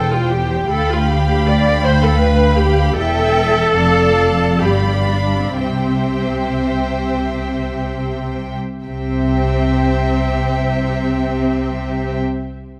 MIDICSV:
0, 0, Header, 1, 6, 480
1, 0, Start_track
1, 0, Key_signature, 0, "major"
1, 0, Tempo, 802139
1, 434, Time_signature, 3, 2, 24, 8
1, 434, Tempo, 746269
1, 1874, Tempo, 797872
1, 2354, Tempo, 860832
1, 2834, Tempo, 943396
1, 3314, Tempo, 1045296
1, 3794, Tempo, 1117318
1, 5714, Tempo, 1065719
1, 6487, End_track
2, 0, Start_track
2, 0, Title_t, "Violin section"
2, 0, Program_c, 0, 48
2, 0, Note_on_c, 0, 79, 35
2, 411, Note_off_c, 0, 79, 0
2, 435, Note_on_c, 0, 83, 42
2, 1850, Note_off_c, 0, 83, 0
2, 1875, Note_on_c, 0, 79, 51
2, 2331, Note_off_c, 0, 79, 0
2, 2356, Note_on_c, 0, 81, 42
2, 2833, Note_on_c, 0, 83, 39
2, 2835, Note_off_c, 0, 81, 0
2, 3314, Note_off_c, 0, 83, 0
2, 3318, Note_on_c, 0, 79, 31
2, 4620, Note_off_c, 0, 79, 0
2, 4756, Note_on_c, 0, 79, 35
2, 6218, Note_off_c, 0, 79, 0
2, 6487, End_track
3, 0, Start_track
3, 0, Title_t, "Violin section"
3, 0, Program_c, 1, 48
3, 0, Note_on_c, 1, 72, 43
3, 0, Note_on_c, 1, 79, 39
3, 414, Note_off_c, 1, 72, 0
3, 437, Note_on_c, 1, 77, 46
3, 1850, Note_off_c, 1, 77, 0
3, 1853, Note_off_c, 1, 79, 0
3, 1875, Note_on_c, 1, 76, 53
3, 1876, Note_on_c, 1, 79, 54
3, 2331, Note_off_c, 1, 76, 0
3, 2332, Note_off_c, 1, 79, 0
3, 2353, Note_on_c, 1, 77, 51
3, 2354, Note_on_c, 1, 74, 43
3, 2824, Note_off_c, 1, 77, 0
3, 2825, Note_off_c, 1, 74, 0
3, 2831, Note_on_c, 1, 74, 35
3, 2831, Note_on_c, 1, 77, 37
3, 3304, Note_off_c, 1, 74, 0
3, 3304, Note_off_c, 1, 77, 0
3, 3313, Note_on_c, 1, 72, 36
3, 3316, Note_on_c, 1, 76, 35
3, 4634, Note_off_c, 1, 72, 0
3, 4636, Note_off_c, 1, 76, 0
3, 4757, Note_on_c, 1, 72, 40
3, 4759, Note_on_c, 1, 76, 40
3, 6219, Note_off_c, 1, 72, 0
3, 6220, Note_off_c, 1, 76, 0
3, 6487, End_track
4, 0, Start_track
4, 0, Title_t, "Viola section"
4, 0, Program_c, 2, 48
4, 0, Note_on_c, 2, 69, 58
4, 76, Note_off_c, 2, 69, 0
4, 77, Note_on_c, 2, 65, 51
4, 194, Note_on_c, 2, 67, 53
4, 197, Note_off_c, 2, 65, 0
4, 431, Note_on_c, 2, 69, 62
4, 433, Note_off_c, 2, 67, 0
4, 554, Note_off_c, 2, 69, 0
4, 564, Note_on_c, 2, 65, 55
4, 682, Note_off_c, 2, 65, 0
4, 683, Note_on_c, 2, 67, 53
4, 914, Note_off_c, 2, 67, 0
4, 917, Note_on_c, 2, 74, 61
4, 1152, Note_off_c, 2, 74, 0
4, 1156, Note_on_c, 2, 72, 70
4, 1272, Note_off_c, 2, 72, 0
4, 1278, Note_on_c, 2, 69, 62
4, 1388, Note_on_c, 2, 71, 65
4, 1392, Note_off_c, 2, 69, 0
4, 1623, Note_off_c, 2, 71, 0
4, 1629, Note_on_c, 2, 67, 67
4, 1875, Note_off_c, 2, 67, 0
4, 1875, Note_on_c, 2, 69, 81
4, 2835, Note_off_c, 2, 69, 0
4, 2836, Note_on_c, 2, 67, 53
4, 3066, Note_on_c, 2, 62, 37
4, 3067, Note_off_c, 2, 67, 0
4, 3313, Note_on_c, 2, 60, 35
4, 3315, Note_off_c, 2, 62, 0
4, 4494, Note_off_c, 2, 60, 0
4, 4750, Note_on_c, 2, 60, 41
4, 6211, Note_off_c, 2, 60, 0
4, 6487, End_track
5, 0, Start_track
5, 0, Title_t, "Cello section"
5, 0, Program_c, 3, 48
5, 0, Note_on_c, 3, 40, 39
5, 412, Note_off_c, 3, 40, 0
5, 438, Note_on_c, 3, 38, 47
5, 1851, Note_off_c, 3, 38, 0
5, 1879, Note_on_c, 3, 40, 47
5, 2333, Note_off_c, 3, 40, 0
5, 2359, Note_on_c, 3, 41, 48
5, 2827, Note_off_c, 3, 41, 0
5, 2839, Note_on_c, 3, 43, 38
5, 3317, Note_off_c, 3, 43, 0
5, 3320, Note_on_c, 3, 48, 31
5, 4621, Note_off_c, 3, 48, 0
5, 4756, Note_on_c, 3, 48, 38
5, 6217, Note_off_c, 3, 48, 0
5, 6487, End_track
6, 0, Start_track
6, 0, Title_t, "Double bass section"
6, 0, Program_c, 4, 48
6, 0, Note_on_c, 4, 28, 39
6, 413, Note_off_c, 4, 28, 0
6, 434, Note_on_c, 4, 38, 43
6, 1849, Note_off_c, 4, 38, 0
6, 1877, Note_on_c, 4, 28, 46
6, 2332, Note_off_c, 4, 28, 0
6, 2352, Note_on_c, 4, 29, 41
6, 2824, Note_off_c, 4, 29, 0
6, 2833, Note_on_c, 4, 31, 40
6, 3315, Note_off_c, 4, 31, 0
6, 3315, Note_on_c, 4, 36, 30
6, 4618, Note_off_c, 4, 36, 0
6, 4754, Note_on_c, 4, 36, 34
6, 6216, Note_off_c, 4, 36, 0
6, 6487, End_track
0, 0, End_of_file